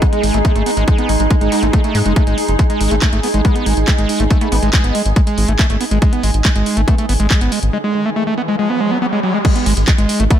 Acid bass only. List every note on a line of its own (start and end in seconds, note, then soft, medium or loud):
0.02 0.06 G#3 loud
0.13 0.23 G#3 loud
0.23 0.34 G#3 medium
0.34 0.38 A3 loud
0.45 0.52 A3 loud
0.56 0.63 A3 loud
0.66 0.70 B3 medium
0.77 0.84 G#3 medium
0.88 0.98 G#3 medium
0.98 1.09 B3 medium
1.31 1.35 G#3 loud
1.41 1.51 G#3 loud
1.52 1.62 G#3 medium
1.63 1.67 A3 loud
1.73 1.80 A3 loud
1.84 1.96 A3 loud
1.95 1.99 G#3 loud
2.06 2.13 G#3 loud
2.16 2.23 A3 medium
2.27 2.37 G#3 medium
2.59 2.63 G#3 loud
2.70 2.80 G#3 loud
2.81 2.91 G#3 medium
2.91 2.95 A3 loud
3.02 3.09 A3 loud
3.13 3.20 A3 loud
3.23 3.28 B3 medium
3.34 3.41 G#3 medium
3.45 3.55 G#3 medium
3.56 3.66 B3 medium
3.66 3.73 G#3 loud
3.88 3.92 G#3 loud
3.98 4.09 G#3 loud
4.09 4.19 G#3 medium
4.20 4.24 A3 loud
4.31 4.38 A3 loud
4.41 4.48 A3 loud
4.52 4.56 B3 medium
4.63 4.70 G#3 medium
4.73 4.84 G#3 medium
4.84 4.94 B3 medium
4.95 5.02 G#3 loud
5.16 5.20 G#3 loud
5.27 5.37 G#3 loud
5.38 5.48 G#3 medium
5.48 5.53 A3 loud
5.59 5.66 A3 loud
5.70 5.77 A3 loud
5.81 5.85 B3 medium
5.91 5.98 G#3 medium
6.02 6.12 G#3 medium
6.13 6.23 B3 medium
6.23 6.30 G#3 loud
6.45 6.49 G#3 loud
6.56 6.66 G#3 loud
6.66 6.76 G#3 medium
6.77 6.81 A3 loud
6.88 6.95 A3 loud
6.98 7.05 A3 loud
7.09 7.13 B3 medium
7.20 7.27 G#3 medium
7.31 7.41 G#3 medium
7.41 7.51 B3 medium
7.52 7.59 G#3 loud
7.73 7.78 G#3 loud
7.84 7.94 G#3 loud
7.95 8.05 G#3 medium
8.06 8.10 A3 loud
8.16 8.23 A3 loud
8.27 8.34 A3 loud
8.38 8.42 B3 medium
8.48 8.55 G#3 medium
8.59 8.69 G#3 medium
8.70 8.80 B3 medium
8.81 8.91 G#3 loud
8.91 8.98 B3 medium
9.02 9.06 B3 loud
9.13 9.20 G#3 medium
9.23 9.34 F#3 medium
9.34 9.38 G#3 medium
9.45 9.55 G#3 medium
9.56 9.66 B3 medium
9.66 9.73 G#3 loud
9.88 9.92 G#3 loud
9.98 10.09 G#3 loud
10.09 10.19 G#3 medium
10.20 10.24 A3 loud
10.31 10.38 A3 loud